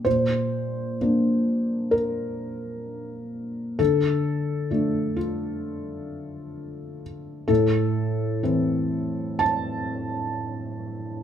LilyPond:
<<
  \new Staff \with { instrumentName = "Felt piano" } { \time 4/4 \key d \minor \tempo 4 = 65 c''2 bes'2 | a'4. f'2 r8 | a'2 a''2 | }
  \new Staff \with { instrumentName = "Felt piano" } { \clef bass \time 4/4 \key d \minor bes,4 <f bes d'>2. | d4 <f a d'>2. | a,4 <e c' e'>2. | }
>>